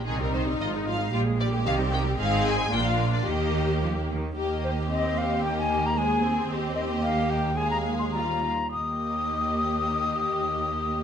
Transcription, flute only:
X:1
M:2/4
L:1/16
Q:1/4=111
K:Eb
V:1 name="Flute"
z8 | z8 | z8 | z8 |
z2 c2 e2 f2 | g a2 b a4 | z2 e2 f2 g2 | a b2 c' b4 |
e'8- | e'8 |]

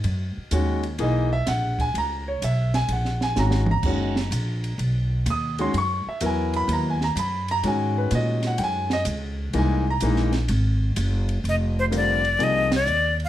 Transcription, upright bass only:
X:1
M:4/4
L:1/8
Q:"Swing" 1/4=126
K:C#dor
V:1 name="Upright bass" clef=bass
F,, z D,,2 B,,,2 A,,,2 | C,,2 B,,,2 A,,,2 G,,,2 | F,,,2 A,,,2 B,,,2 D,,2 | F,, z E,,2 D,,2 F,,2 |
G,,2 A,,2 F,,2 C,,2 | =C,,2 _B,,,2 G,,,2 F,,,2 | [K:Fm] F,,,4 C,,2 E,,2 |]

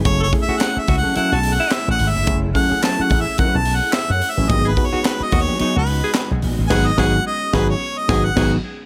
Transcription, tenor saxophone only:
X:1
M:4/4
L:1/16
Q:"Swing 16ths" 1/4=108
K:F#dor
V:1 name="Tenor saxophone"
z A z F z2 F z E F z E z4 | z16 | z G z F z2 F z D F z G z4 | G2 G2 z2 G2 z2 G2 G2 z2 |]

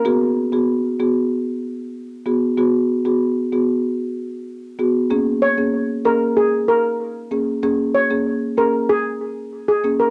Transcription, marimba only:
X:1
M:4/4
L:1/16
Q:1/4=95
K:Bbphr
V:1 name="Marimba"
[CGA] z2 [CGA] z2 [CGA] z6 z [CGA] z | [CGA] z2 [CGA] z2 [CGA] z6 z [CGA]2 | [B,DA] z2 [B,DA] z2 [B,DA] z6 z [B,DA] z | [B,DA] z2 [B,DA] z2 [B,DA] z6 z [B,DA]2 |]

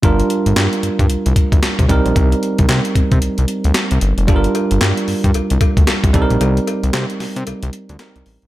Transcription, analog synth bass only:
X:1
M:4/4
L:1/16
Q:"Swing 16ths" 1/4=113
K:Gm
V:1 name="Analog synth bass" clef=bass
G,,,2 z G,,, G,, z G,, G,, C,, C,, z D,, z C,, C,, B,,, | C,,2 z C,, C, z C, C, C,, C,, z D,, z C,, G,,, F,,, | G,,,2 z G,,, G,, z G,, G,, C,, C,, z D,, z C,, C,, B,,, | C,,2 z C,, C, z C, C, C,, C,, z D,, z C,, A,,, B,,, |]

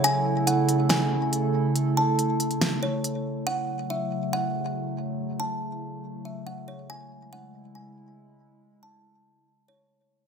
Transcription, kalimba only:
X:1
M:4/4
L:1/8
Q:1/4=140
K:A
V:1 name="Kalimba"
g2 f2 g2 z2 | z a4 c z2 | f2 e2 f2 z2 | z a4 e f c |
g2 f2 g2 z2 | z a4 c z2 |]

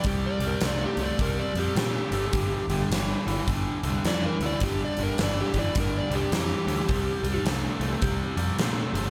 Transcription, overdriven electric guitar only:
X:1
M:4/4
L:1/8
Q:"Swing" 1/4=105
K:C
V:1 name="Overdriven electric guitar" clef=bass
[C,G,] [C,G,] [C,A,] [C,A,] [C,G,] [C,G,] [C,A,] [C,A,] | [G,,D,] [G,,D,] [G,,E,] [G,,E,] [G,,D,] [G,,D,] [G,,E,] [G,,E,] | [G,,D,] [G,,D,] [G,,E,] [G,,E,] [G,,D,] [G,,D,] [G,,E,] [G,,E,] | [C,G,] [C,G,] [C,A,] [C,A,] [C,G,] [C,G,] [C,A,] [C,A,] |]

